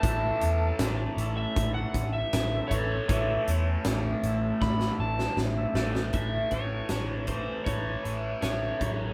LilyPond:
<<
  \new Staff \with { instrumentName = "Electric slide guitar" } { \time 4/4 \key a \major \tempo 4 = 79 a''4.~ a''16 e''8 fis''8 e''8. cis''8~ | cis''4. r8 b''8 a''8 r4 | e''8 cis''4 c''8 cis''4 cis''4 | }
  \new Staff \with { instrumentName = "Tonewheel organ" } { \time 4/4 \key a \major <a cis' e' a'>4~ <a cis' e' a'>16 r16 <a cis' e' a'>4~ <a cis' e' a'>16 r8 <a cis' e' a'>8 r16 | <a cis' e' a'>4~ <a cis' e' a'>16 r16 <a cis' e' a'>4~ <a cis' e' a'>16 r8 <a cis' e' a'>8 r16 | r1 | }
  \new Staff \with { instrumentName = "Overdriven electric guitar" } { \clef bass \time 4/4 \key a \major <a, e a>2.~ <a, e a>8 <a, e a>8 | <a, e a>2.~ <a, e a>8 <a, e a>8 | <a, e a>8 <a, e a>8 <a, e a>8 <a, e a>8 <a, e a>8 <a, e a>8 <a, e a>8 <fis, cis fis>8 | }
  \new Staff \with { instrumentName = "Fingered electric bass" } { \clef bass \time 4/4 \key a \major a,,8 e,8 a,,8 a,,8 a,,8 a,,8 a,,8 a,,8 | a,,8 e,8 a,,8 a,,8 a,,8 a,,8 a,,8 a,,8 | a,,8 a,,8 a,,4 a,,8 a,,8 a,,8 a,,8 | }
  \new DrumStaff \with { instrumentName = "Drums" } \drummode { \time 4/4 <hh bd>8 hh8 <hh sn>8 hh8 <hh bd>8 <hh bd>8 <hh sn>8 <hh bd>8 | <hh bd>8 hh8 <hh sn>8 hh8 <bd sn>16 sn8 sn16 sn8 sn16 sn16 | <hh bd>8 <hh bd>8 <hh sn>8 <hh bd>8 <hh bd>8 hh8 <hh sn>8 <hh bd>8 | }
>>